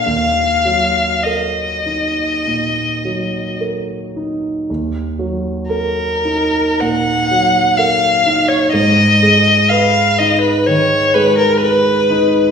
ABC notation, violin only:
X:1
M:4/4
L:1/16
Q:1/4=60
K:Ebm
V:1 name="Violin"
f4 e8 z4 | z4 B4 g4 f3 d | e4 f2 e c d2 c B c4 |]